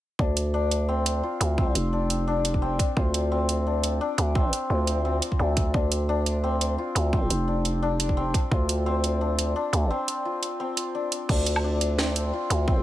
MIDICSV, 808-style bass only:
0, 0, Header, 1, 2, 480
1, 0, Start_track
1, 0, Key_signature, -1, "minor"
1, 0, Tempo, 346821
1, 268, Time_signature, 4, 2, 24, 8
1, 17755, End_track
2, 0, Start_track
2, 0, Title_t, "808-style bass"
2, 0, Program_c, 0, 38
2, 265, Note_on_c, 0, 38, 94
2, 1689, Note_off_c, 0, 38, 0
2, 1945, Note_on_c, 0, 38, 93
2, 2410, Note_off_c, 0, 38, 0
2, 2423, Note_on_c, 0, 29, 89
2, 3848, Note_off_c, 0, 29, 0
2, 4107, Note_on_c, 0, 38, 94
2, 5531, Note_off_c, 0, 38, 0
2, 5786, Note_on_c, 0, 38, 96
2, 6250, Note_off_c, 0, 38, 0
2, 6506, Note_on_c, 0, 38, 94
2, 7210, Note_off_c, 0, 38, 0
2, 7466, Note_on_c, 0, 38, 92
2, 7930, Note_off_c, 0, 38, 0
2, 7947, Note_on_c, 0, 38, 95
2, 9370, Note_off_c, 0, 38, 0
2, 9624, Note_on_c, 0, 38, 93
2, 10089, Note_off_c, 0, 38, 0
2, 10108, Note_on_c, 0, 29, 91
2, 11531, Note_off_c, 0, 29, 0
2, 11784, Note_on_c, 0, 38, 97
2, 13209, Note_off_c, 0, 38, 0
2, 13465, Note_on_c, 0, 38, 96
2, 13707, Note_off_c, 0, 38, 0
2, 15628, Note_on_c, 0, 38, 92
2, 17051, Note_off_c, 0, 38, 0
2, 17303, Note_on_c, 0, 38, 93
2, 17755, Note_off_c, 0, 38, 0
2, 17755, End_track
0, 0, End_of_file